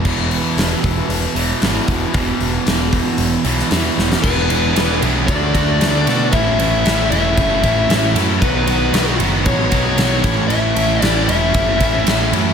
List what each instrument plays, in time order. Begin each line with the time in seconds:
0.05 picked electric bass E1, distorted electric guitar E2 B2 E3, kick, crash
0.31 open hi-hat
0.57 picked electric bass E1, snare, open hi-hat
0.84 picked electric bass E1, kick, open hi-hat
1.09 picked electric bass E1, open hi-hat
1.35 picked electric bass E1, distorted electric guitar E2 B2 E3, open hi-hat
1.62 picked electric bass G#1, distorted electric guitar E2 B2 E3, snare, open hi-hat
1.88 picked electric bass E1, kick, open hi-hat
2.13 picked electric bass E1, distorted electric guitar E2 B2 E3, kick, open hi-hat
2.40 picked electric bass E1, open hi-hat
2.66 picked electric bass E1, snare, open hi-hat
2.93 kick, open hi-hat
3.18 picked electric bass E1, open hi-hat
3.44 picked electric bass B1, distorted electric guitar E2 B2 E3, open hi-hat
3.59 snare
3.71 picked electric bass E2, distorted electric guitar E2 B2 E3, snare, open hi-hat
3.97 picked electric bass E1, snare
4.12 snare
4.22 picked electric bass E1, distorted electric guitar E3 G#3 B3 E4, overdriven electric guitar D4 G#4, lead electric guitar B4, kick, crash
4.49 picked electric bass E1, distorted electric guitar G#3 B3 E4, overdriven electric guitar D4 G#4, ride
4.76 picked electric bass E1, distorted electric guitar E3 G#3 B3 E4, overdriven electric guitar D4 G#4, snare, ride
5.01 picked electric bass B1, distorted electric guitar B3 E4, overdriven electric guitar D4 G#4, ride
5.05 distorted electric guitar G#3
5.27 picked electric bass D2, distorted electric guitar D3 A3 D4, lead electric guitar D5, kick, ride
5.32 distorted electric guitar F#4
5.54 picked electric bass D2, distorted electric guitar A3 D4 F#4, kick, ride
5.80 picked electric bass D2, overdriven electric guitar D3 A3 D4 F#4, snare, ride
6.06 picked electric bass B2, distorted electric guitar A3 D4 F#4, snare, ride
6.32 picked electric bass A1, distorted electric guitar A2 E3 A3 C#4 E4, lead electric guitar E5, kick, ride
6.59 picked electric bass A1, distorted electric guitar A3 C#4 E4, ride
6.85 picked electric bass A1, distorted electric guitar E3 A3 C#4 E4, snare, ride
7.11 picked electric bass E1, distorted electric guitar A3 C#4 E4, lead electric guitar E5, ride
7.37 picked electric bass F#1, distorted electric guitar A2 E3 A3 C#4 E4, kick, ride
7.63 picked electric bass A1, distorted electric guitar A3 C#4 E4, kick, ride
7.88 picked electric bass A1, overdriven electric guitar A2 E3 A3 C#4 E4, snare, ride
8.15 picked electric bass F#2, distorted electric guitar C#4 E4, snare, ride
8.19 distorted electric guitar A3
8.41 picked electric bass B1, distorted electric guitar B2 D#3 F#3 B3 F#4, overdriven electric guitar D#4, lead electric guitar B4, kick, ride
8.67 picked electric bass B1, distorted electric guitar F#3 B3 F#4, overdriven electric guitar D#4, ride
8.93 picked electric bass B1, distorted electric guitar D#3 F#3 B3 F#4, overdriven electric guitar D#4, snare, ride
9.19 picked electric bass F#1, distorted electric guitar F#3 B3 F#4, overdriven electric guitar D#4, ride
9.46 picked electric bass A1, distorted electric guitar B2 D#3 F#3 B3 F#4, lead electric guitar C#5, kick, ride
9.72 picked electric bass B1, distorted electric guitar F#3 B3 F#4, overdriven electric guitar D#4, kick, ride
9.97 picked electric bass B1, overdriven electric guitar B2 D#3 F#3 B3 D#4, snare, ride
10.24 picked electric bass A1, distorted electric guitar A2 E3 A3 C#4 E4, kick, snare, ride
10.48 picked electric bass A1, distorted electric guitar A2 E3 A3 C#4, lead electric guitar E5, ride
10.52 distorted electric guitar E4
10.75 picked electric bass A1, distorted electric guitar A3 C#4 E4, ride
11.01 picked electric bass A1, distorted electric guitar E3 A3 C#4 E4, lead electric guitar D5, snare, ride
11.24 picked electric bass E1, distorted electric guitar E4, lead electric guitar E5
11.29 distorted electric guitar A3 C#4, ride
11.53 picked electric bass F#1, distorted electric guitar A2 E3 A3 C#4 E4, kick, ride
11.79 picked electric bass A1, distorted electric guitar A3 C#4 E4, kick, ride
12.06 picked electric bass A1, overdriven electric guitar A2 E3 A3 C#4 E4, snare, ride
12.32 picked electric bass F#2, distorted electric guitar A3 C#4 E4, ride